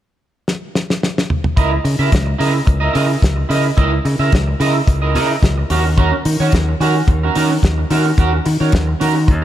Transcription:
0.48 snare medium
0.75 snare medium
0.90 snare medium
1.03 snare medium
1.18 snare medium
1.30 mid tom medium
1.44 mid tom medium
1.57 1.78 C#2 medium
1.57 1.73 E4 medium
1.57 1.71 A#4 medium
1.57 1.70 D#5 medium
1.57 kick loud
1.57 closed hi-hat medium
1.71 muted clean electric guitar stroke soft
1.84 1.95 C#3 medium
1.84 muted clean electric guitar stroke soft
1.84 open hi-hat medium
1.99 2.09 C#3 medium
1.99 2.10 E4 medium
1.99 2.11 A#4 medium
1.99 2.11 E5 medium
2.11 2.33 C#2 medium
2.11 muted clean electric guitar stroke soft
2.11 kick medium
2.11 snare medium
2.11 closed hi-hat medium
2.26 muted clean electric guitar stroke soft
2.38 2.60 C#3 medium
2.38 2.56 E4 medium
2.38 2.53 A#4 medium
2.38 2.52 D#5 medium
2.38 open hi-hat medium
2.53 muted clean electric guitar stroke medium
2.66 2.88 C#2 medium
2.66 muted clean electric guitar stroke soft
2.66 kick loud
2.66 closed hi-hat medium
2.80 2.92 E4 soft
2.80 2.92 A#4 medium
2.80 2.93 D#5 medium
2.93 3.15 C#3 loud
2.93 3.11 E4 medium
2.93 3.08 A#4 medium
2.93 3.06 D#5 medium
2.93 open hi-hat medium
3.07 muted clean electric guitar stroke soft
3.22 3.43 C#2 medium
3.22 kick medium
3.22 snare medium
3.22 closed hi-hat medium
3.36 muted clean electric guitar stroke soft
3.49 3.70 C#3 loud
3.49 3.66 E4 medium
3.49 3.64 A#4 medium
3.49 3.63 D#5 medium
3.49 open hi-hat medium
3.65 muted clean electric guitar stroke soft
3.77 3.98 C#2 medium
3.77 3.94 E4 medium
3.77 3.92 A#4 medium
3.77 3.91 D#5 medium
3.77 kick loud
3.77 closed hi-hat medium
3.92 muted clean electric guitar stroke soft
4.05 4.16 C#3 medium
4.05 muted clean electric guitar stroke soft
4.05 open hi-hat medium
4.19 4.29 C#3 medium
4.19 4.32 E4 soft
4.19 4.32 A#4 medium
4.19 4.31 E5 medium
4.32 4.53 C#2 medium
4.32 muted clean electric guitar stroke soft
4.32 kick medium
4.32 snare medium
4.32 closed hi-hat medium
4.47 muted clean electric guitar stroke soft
4.60 4.80 C#3 loud
4.60 4.77 E4 medium
4.60 4.74 A#4 medium
4.60 4.73 D#5 medium
4.60 open hi-hat medium
4.74 muted clean electric guitar stroke soft
4.87 5.16 C#2 loud
4.87 muted clean electric guitar stroke soft
4.87 kick loud
4.87 closed hi-hat medium
5.02 5.14 E4 soft
5.02 5.14 A#4 soft
5.02 5.14 D#5 medium
5.15 5.35 C#3 medium
5.15 5.32 E4 medium
5.15 5.30 A#4 medium
5.15 5.28 D#5 medium
5.15 open hi-hat medium
5.30 muted clean electric guitar stroke soft
5.42 5.63 C#2 loud
5.42 kick medium
5.42 snare medium
5.42 closed hi-hat medium
5.58 muted clean electric guitar stroke soft
5.70 6.11 D#2 loud
5.70 5.87 C#4 medium
5.70 5.85 F#4 medium
5.70 5.84 A#4 medium
5.70 open hi-hat medium
5.85 muted clean electric guitar stroke soft
5.97 6.14 C#4 medium
5.97 6.12 F#4 medium
5.97 6.11 A#4 medium
5.97 kick loud
5.97 closed hi-hat medium
6.12 muted clean electric guitar stroke soft
6.25 6.36 D#3 medium
6.25 muted clean electric guitar stroke soft
6.25 open hi-hat medium
6.40 6.50 D#3 medium
6.40 6.53 C#4 soft
6.40 6.52 F#4 medium
6.40 6.52 C#5 medium
6.52 6.73 D#2 loud
6.52 muted clean electric guitar stroke soft
6.52 kick medium
6.52 snare medium
6.52 closed hi-hat medium
6.69 muted clean electric guitar stroke soft
6.80 7.01 D#3 loud
6.80 6.97 C#4 medium
6.80 6.96 F#4 medium
6.80 6.94 A#4 medium
6.80 open hi-hat medium
6.95 muted clean electric guitar stroke soft
7.08 7.28 D#2 loud
7.08 muted clean electric guitar stroke soft
7.08 kick loud
7.08 closed hi-hat medium
7.23 7.34 C#4 soft
7.23 7.35 F#4 soft
7.23 7.35 A#4 soft
7.35 7.56 D#3 medium
7.35 7.52 C#4 medium
7.35 7.51 F#4 medium
7.35 7.49 A#4 medium
7.35 open hi-hat medium
7.51 muted clean electric guitar stroke soft
7.63 7.83 D#2 medium
7.63 kick medium
7.63 snare medium
7.63 closed hi-hat medium
7.78 muted clean electric guitar stroke soft
7.90 8.11 D#3 medium
7.90 8.07 C#4 medium
7.90 8.06 F#4 medium
7.90 8.05 A#4 medium
7.90 open hi-hat medium
8.06 muted clean electric guitar stroke medium
8.18 8.38 D#2 medium
8.18 8.35 C#4 medium
8.18 8.33 F#4 medium
8.18 8.32 A#4 medium
8.18 kick loud
8.18 closed hi-hat medium
8.33 muted clean electric guitar stroke soft
8.45 8.57 D#3 medium
8.45 muted clean electric guitar stroke soft
8.45 open hi-hat medium
8.60 8.70 D#3 medium
8.60 8.71 C#4 soft
8.60 8.72 F#4 soft
8.60 8.72 C#5 medium
8.72 8.93 D#2 loud
8.72 muted clean electric guitar stroke soft
8.72 kick medium
8.72 snare loud
8.72 closed hi-hat medium
8.87 muted clean electric guitar stroke soft
9.00 9.30 D#3 medium
9.00 9.17 C#4 medium
9.00 9.15 F#4 medium
9.00 9.14 A#4 medium
9.00 open hi-hat medium
9.15 muted clean electric guitar stroke soft
9.27 9.44 D#2 loud
9.27 muted clean electric guitar stroke soft
9.27 kick loud
9.27 closed hi-hat medium

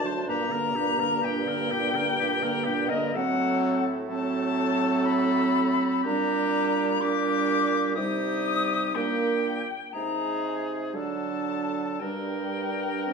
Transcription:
0.00 0.30 D2 medium
0.00 0.25 D4 medium
0.00 0.27 A5 loud
0.04 0.27 F#3 medium
0.04 0.29 C5 medium
0.26 3.14 G2 medium
0.26 0.52 A#2 medium
0.26 0.52 D4 medium
0.26 0.53 G4 medium
0.26 1.25 A#5 loud
0.50 0.76 D3 medium
0.50 0.77 A#3 medium
0.50 0.77 A#4 medium
0.74 1.00 A#2 medium
0.74 1.02 D4 medium
0.74 1.02 G4 medium
0.99 1.22 D3 medium
0.99 1.24 A#3 medium
0.99 1.21 A#4 medium
1.22 1.47 A#2 medium
1.22 1.50 D4 medium
1.22 1.49 G4 medium
1.22 2.90 G5 loud
1.45 1.71 D3 medium
1.45 1.74 A#3 medium
1.45 1.73 A#4 medium
1.70 1.95 A#2 medium
1.70 1.98 D4 medium
1.70 1.97 G4 medium
1.94 2.18 D3 medium
1.94 2.20 A#3 medium
1.94 2.19 A#4 medium
2.19 2.43 A#2 medium
2.19 2.45 D4 medium
2.19 2.44 G4 medium
2.42 2.67 D3 medium
2.42 2.69 A#3 medium
2.42 2.66 A#4 medium
2.64 2.91 A#2 medium
2.64 2.92 D4 medium
2.64 2.91 G4 medium
2.88 3.14 D3 medium
2.88 3.15 A#3 medium
2.88 3.13 A#4 medium
2.88 3.17 D#5 loud
3.13 5.88 A2 medium
3.13 3.93 F#3 medium
3.13 3.95 C4 medium
3.13 3.91 A4 medium
3.13 3.84 F#5 loud
4.08 6.01 F#3 loud
4.08 6.06 C4 medium
4.08 6.00 A4 medium
4.08 5.06 A5 loud
5.05 6.04 B5 loud
6.03 7.99 A#2 medium
6.03 6.99 G3 medium
6.03 7.00 D4 medium
6.03 6.98 G4 medium
6.03 7.02 A#5 loud
7.00 7.95 G3 medium
7.00 7.95 D4 medium
7.00 7.95 G4 medium
7.00 7.93 D6 loud
7.94 8.96 C3 medium
7.94 8.93 G3 medium
7.94 8.97 D#4 medium
7.94 8.93 G4 medium
7.94 8.96 D#6 loud
8.94 9.65 A#2 medium
8.94 9.65 A#3 medium
8.94 9.66 D4 medium
8.94 9.65 G4 medium
8.94 9.94 G5 loud
9.92 10.96 C3 medium
9.92 10.95 G#3 medium
9.92 10.97 D#4 medium
9.92 10.91 G#4 medium
9.92 10.65 A#5 loud
10.93 12.01 D3 medium
10.93 12.02 F#3 medium
10.93 12.00 D4 medium
10.93 12.03 A4 medium
10.93 12.01 A5 medium
11.99 13.13 G2 medium
11.99 12.97 G3 medium
11.99 13.13 D4 medium
11.99 13.13 A#4 medium
11.99 13.13 G5 loud
13.07 13.13 C4 medium

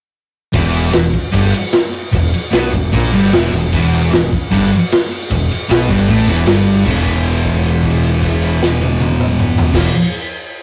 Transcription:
0.53 0.91 E1 loud
0.53 0.90 E2 loud
0.53 0.93 E3 loud
0.53 kick loud
0.53 crash medium
0.73 crash medium
0.91 1.12 E1 medium
0.91 1.08 E2 medium
0.91 snare loud
0.91 crash medium
1.13 kick medium
1.13 crash medium
1.32 1.52 G1 medium
1.32 1.52 G2 medium
1.32 1.53 G3 loud
1.32 kick medium
1.32 crash medium
1.54 crash medium
1.73 snare loud
1.73 crash medium
1.93 crash medium
2.13 2.31 E1 medium
2.13 2.29 E2 medium
2.13 kick loud
2.13 crash medium
2.33 crash medium
2.52 2.71 B1 loud
2.52 2.72 B2 loud
2.52 2.73 B3 loud
2.52 snare loud
2.52 crash medium
2.72 2.92 E1 medium
2.72 2.88 E2 medium
2.72 kick medium
2.72 crash medium
2.92 3.12 A#1 loud
2.92 3.12 A#2 medium
2.92 3.12 A#3 loud
2.92 kick medium
2.92 crash medium
3.12 3.31 G1 loud
3.12 3.32 G2 medium
3.12 3.33 G3 loud
3.12 crash medium
3.32 3.51 E1 medium
3.32 3.52 E2 medium
3.32 3.53 E3 loud
3.32 snare loud
3.32 crash medium
3.52 3.71 E1 medium
3.52 3.68 E2 medium
3.52 crash medium
3.72 4.09 E1 loud
3.72 4.10 E2 loud
3.72 4.12 E3 loud
3.72 kick loud
3.72 crash medium
3.93 crash medium
4.11 4.31 E1 medium
4.11 4.27 E2 medium
4.11 snare medium
4.11 crash medium
4.33 kick medium
4.33 crash medium
4.51 4.70 G1 medium
4.51 4.70 G2 medium
4.51 4.71 G3 loud
4.51 kick medium
4.51 crash medium
4.72 crash medium
4.92 snare loud
4.92 crash medium
5.12 crash medium
5.30 5.49 E1 medium
5.30 5.46 E2 medium
5.30 kick loud
5.30 crash medium
5.51 crash medium
5.69 5.88 B1 loud
5.69 5.88 B2 medium
5.69 5.89 B3 medium
5.69 snare loud
5.69 crash medium
5.88 6.07 G1 loud
5.88 6.08 G2 medium
5.88 6.08 G3 loud
5.88 kick medium
5.88 crash medium
6.07 6.27 A1 medium
6.07 6.27 A2 medium
6.07 6.28 A3 loud
6.07 kick medium
6.07 crash medium
6.27 6.46 E1 loud
6.27 6.46 E2 medium
6.27 6.47 E3 medium
6.27 crash medium
6.47 6.84 G1 medium
6.47 6.85 G2 loud
6.47 6.86 G3 loud
6.47 snare loud
6.47 crash medium
6.67 crash medium
6.85 9.64 E1 loud
6.85 9.71 E2 medium
6.85 9.73 B2 loud
6.85 9.75 E3 loud
6.85 kick loud
6.85 crash medium
7.06 kick medium
7.06 crash soft
7.25 crash soft
7.44 kick medium
7.44 crash soft
7.64 crash soft
7.83 kick medium
7.83 crash soft
8.03 crash medium
8.22 kick medium
8.22 crash medium
8.42 crash medium
8.63 snare medium
8.81 high tom loud
9.00 high tom loud
9.20 mid tom loud
9.39 mid tom loud
9.58 floor tom loud
9.71 9.89 E1 loud
9.71 9.89 E2 loud
9.71 9.91 B2 loud
9.71 kick loud
9.71 snare loud
9.71 crash loud
9.76 9.92 E3 loud

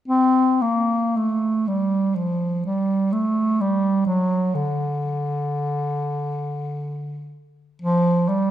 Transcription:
0.08 0.63 C4 medium
0.62 1.18 A#3 soft
1.17 1.69 A3 soft
1.67 2.17 G3 soft
2.16 2.64 F3 soft
2.65 3.14 G3 soft
3.12 3.62 A3 soft
3.61 4.06 G3 soft
4.06 4.56 F#3 medium
4.55 7.35 D3 soft
7.82 8.30 F3 medium
8.28 8.51 G3 soft

